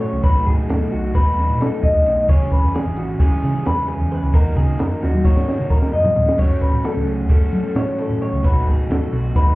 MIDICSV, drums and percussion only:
0, 0, Header, 1, 2, 480
1, 0, Start_track
1, 0, Tempo, 455927
1, 250, Time_signature, 9, 3, 24, 8
1, 10054, End_track
2, 0, Start_track
2, 0, Title_t, "Drums"
2, 9, Note_on_c, 9, 51, 77
2, 21, Note_on_c, 9, 38, 35
2, 115, Note_off_c, 9, 51, 0
2, 126, Note_off_c, 9, 38, 0
2, 246, Note_on_c, 9, 51, 116
2, 250, Note_on_c, 9, 36, 118
2, 352, Note_off_c, 9, 51, 0
2, 355, Note_off_c, 9, 36, 0
2, 490, Note_on_c, 9, 36, 72
2, 490, Note_on_c, 9, 51, 76
2, 595, Note_off_c, 9, 36, 0
2, 596, Note_off_c, 9, 51, 0
2, 729, Note_on_c, 9, 51, 113
2, 741, Note_on_c, 9, 38, 112
2, 835, Note_off_c, 9, 51, 0
2, 846, Note_off_c, 9, 38, 0
2, 966, Note_on_c, 9, 51, 82
2, 1072, Note_off_c, 9, 51, 0
2, 1211, Note_on_c, 9, 36, 105
2, 1212, Note_on_c, 9, 51, 106
2, 1223, Note_on_c, 9, 38, 36
2, 1316, Note_off_c, 9, 36, 0
2, 1317, Note_off_c, 9, 51, 0
2, 1329, Note_off_c, 9, 38, 0
2, 1456, Note_on_c, 9, 51, 78
2, 1467, Note_on_c, 9, 38, 34
2, 1561, Note_off_c, 9, 51, 0
2, 1573, Note_off_c, 9, 38, 0
2, 1695, Note_on_c, 9, 51, 101
2, 1706, Note_on_c, 9, 38, 113
2, 1800, Note_off_c, 9, 51, 0
2, 1812, Note_off_c, 9, 38, 0
2, 1928, Note_on_c, 9, 51, 74
2, 1930, Note_on_c, 9, 36, 88
2, 2033, Note_off_c, 9, 51, 0
2, 2035, Note_off_c, 9, 36, 0
2, 2171, Note_on_c, 9, 51, 81
2, 2183, Note_on_c, 9, 38, 37
2, 2276, Note_off_c, 9, 51, 0
2, 2288, Note_off_c, 9, 38, 0
2, 2410, Note_on_c, 9, 36, 107
2, 2413, Note_on_c, 9, 51, 96
2, 2516, Note_off_c, 9, 36, 0
2, 2518, Note_off_c, 9, 51, 0
2, 2650, Note_on_c, 9, 36, 70
2, 2652, Note_on_c, 9, 51, 73
2, 2755, Note_off_c, 9, 36, 0
2, 2758, Note_off_c, 9, 51, 0
2, 2891, Note_on_c, 9, 51, 98
2, 2903, Note_on_c, 9, 38, 114
2, 2997, Note_off_c, 9, 51, 0
2, 3008, Note_off_c, 9, 38, 0
2, 3124, Note_on_c, 9, 51, 76
2, 3136, Note_on_c, 9, 38, 37
2, 3229, Note_off_c, 9, 51, 0
2, 3241, Note_off_c, 9, 38, 0
2, 3365, Note_on_c, 9, 51, 100
2, 3367, Note_on_c, 9, 36, 115
2, 3470, Note_off_c, 9, 51, 0
2, 3473, Note_off_c, 9, 36, 0
2, 3604, Note_on_c, 9, 51, 77
2, 3616, Note_on_c, 9, 38, 36
2, 3710, Note_off_c, 9, 51, 0
2, 3721, Note_off_c, 9, 38, 0
2, 3846, Note_on_c, 9, 51, 104
2, 3858, Note_on_c, 9, 38, 112
2, 3952, Note_off_c, 9, 51, 0
2, 3963, Note_off_c, 9, 38, 0
2, 4085, Note_on_c, 9, 51, 81
2, 4191, Note_off_c, 9, 51, 0
2, 4327, Note_on_c, 9, 51, 80
2, 4432, Note_off_c, 9, 51, 0
2, 4565, Note_on_c, 9, 51, 108
2, 4568, Note_on_c, 9, 36, 110
2, 4671, Note_off_c, 9, 51, 0
2, 4673, Note_off_c, 9, 36, 0
2, 4802, Note_on_c, 9, 51, 83
2, 4806, Note_on_c, 9, 36, 69
2, 4907, Note_off_c, 9, 51, 0
2, 4912, Note_off_c, 9, 36, 0
2, 5042, Note_on_c, 9, 51, 103
2, 5054, Note_on_c, 9, 38, 110
2, 5147, Note_off_c, 9, 51, 0
2, 5159, Note_off_c, 9, 38, 0
2, 5298, Note_on_c, 9, 38, 67
2, 5403, Note_off_c, 9, 38, 0
2, 5409, Note_on_c, 9, 48, 62
2, 5514, Note_off_c, 9, 48, 0
2, 5524, Note_on_c, 9, 36, 104
2, 5630, Note_off_c, 9, 36, 0
2, 5654, Note_on_c, 9, 38, 67
2, 5759, Note_off_c, 9, 38, 0
2, 5774, Note_on_c, 9, 38, 86
2, 5879, Note_off_c, 9, 38, 0
2, 6005, Note_on_c, 9, 36, 83
2, 6111, Note_off_c, 9, 36, 0
2, 6131, Note_on_c, 9, 38, 72
2, 6236, Note_off_c, 9, 38, 0
2, 6364, Note_on_c, 9, 43, 94
2, 6469, Note_off_c, 9, 43, 0
2, 6486, Note_on_c, 9, 43, 103
2, 6591, Note_off_c, 9, 43, 0
2, 6619, Note_on_c, 9, 38, 99
2, 6725, Note_off_c, 9, 38, 0
2, 6728, Note_on_c, 9, 36, 119
2, 6729, Note_on_c, 9, 49, 104
2, 6729, Note_on_c, 9, 55, 88
2, 6833, Note_off_c, 9, 36, 0
2, 6834, Note_off_c, 9, 49, 0
2, 6834, Note_off_c, 9, 55, 0
2, 6965, Note_on_c, 9, 51, 70
2, 6966, Note_on_c, 9, 36, 73
2, 6976, Note_on_c, 9, 38, 33
2, 7070, Note_off_c, 9, 51, 0
2, 7071, Note_off_c, 9, 36, 0
2, 7082, Note_off_c, 9, 38, 0
2, 7201, Note_on_c, 9, 51, 97
2, 7212, Note_on_c, 9, 38, 110
2, 7306, Note_off_c, 9, 51, 0
2, 7318, Note_off_c, 9, 38, 0
2, 7445, Note_on_c, 9, 51, 79
2, 7550, Note_off_c, 9, 51, 0
2, 7675, Note_on_c, 9, 51, 93
2, 7684, Note_on_c, 9, 36, 111
2, 7780, Note_off_c, 9, 51, 0
2, 7789, Note_off_c, 9, 36, 0
2, 7920, Note_on_c, 9, 51, 73
2, 7931, Note_on_c, 9, 38, 34
2, 8025, Note_off_c, 9, 51, 0
2, 8037, Note_off_c, 9, 38, 0
2, 8160, Note_on_c, 9, 51, 109
2, 8172, Note_on_c, 9, 38, 113
2, 8265, Note_off_c, 9, 51, 0
2, 8277, Note_off_c, 9, 38, 0
2, 8408, Note_on_c, 9, 51, 76
2, 8419, Note_on_c, 9, 38, 37
2, 8513, Note_off_c, 9, 51, 0
2, 8524, Note_off_c, 9, 38, 0
2, 8650, Note_on_c, 9, 51, 83
2, 8756, Note_off_c, 9, 51, 0
2, 8890, Note_on_c, 9, 36, 115
2, 8890, Note_on_c, 9, 51, 113
2, 8995, Note_off_c, 9, 36, 0
2, 8995, Note_off_c, 9, 51, 0
2, 9130, Note_on_c, 9, 51, 81
2, 9131, Note_on_c, 9, 36, 67
2, 9235, Note_off_c, 9, 51, 0
2, 9236, Note_off_c, 9, 36, 0
2, 9377, Note_on_c, 9, 51, 108
2, 9388, Note_on_c, 9, 38, 116
2, 9482, Note_off_c, 9, 51, 0
2, 9494, Note_off_c, 9, 38, 0
2, 9617, Note_on_c, 9, 51, 90
2, 9628, Note_on_c, 9, 38, 36
2, 9722, Note_off_c, 9, 51, 0
2, 9733, Note_off_c, 9, 38, 0
2, 9852, Note_on_c, 9, 51, 105
2, 9853, Note_on_c, 9, 36, 110
2, 9864, Note_on_c, 9, 38, 37
2, 9957, Note_off_c, 9, 51, 0
2, 9958, Note_off_c, 9, 36, 0
2, 9969, Note_off_c, 9, 38, 0
2, 10054, End_track
0, 0, End_of_file